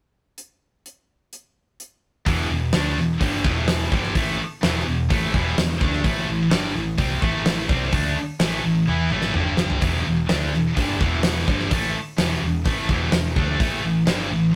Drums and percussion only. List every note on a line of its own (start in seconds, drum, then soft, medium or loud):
0.38 closed hi-hat medium
0.86 closed hi-hat medium
1.33 closed hi-hat medium
1.80 closed hi-hat medium
2.26 kick loud
2.26 open hi-hat medium
2.73 snare loud
2.73 open hi-hat medium
2.98 snare soft
3.21 kick loud
3.21 open hi-hat medium
3.44 kick loud
3.68 snare loud
3.68 open hi-hat medium
3.92 kick loud
4.03 snare soft
4.15 kick medium
4.15 open hi-hat medium
4.63 snare loud
4.63 open hi-hat medium
5.10 kick loud
5.10 open hi-hat medium
5.34 kick loud
5.58 snare loud
5.58 open hi-hat soft
5.81 kick loud
5.93 snare soft
6.04 kick loud
6.04 open hi-hat medium
6.51 snare loud
6.51 open hi-hat medium
6.75 snare soft
6.98 kick loud
6.98 open hi-hat medium
7.22 kick loud
7.46 snare loud
7.46 open hi-hat medium
7.69 kick loud
7.92 kick loud
7.92 open hi-hat medium
8.40 snare loud
8.40 open hi-hat medium
8.87 high tom medium
9.10 mid tom medium
9.22 snare medium
9.34 mid tom medium
9.57 snare loud
9.70 floor tom medium
9.81 kick loud
9.81 open hi-hat soft
10.29 snare loud
10.29 open hi-hat medium
10.53 snare soft
10.77 kick loud
10.77 open hi-hat medium
11.01 kick loud
11.23 snare loud
11.23 open hi-hat medium
11.48 kick loud
11.59 snare soft
11.71 kick loud
11.71 open hi-hat medium
12.18 snare loud
12.18 open hi-hat medium
12.65 kick loud
12.65 open hi-hat medium
12.89 kick loud
13.12 snare loud
13.12 open hi-hat medium
13.36 kick loud
13.60 kick loud
13.60 open hi-hat medium
14.07 snare loud
14.07 open hi-hat soft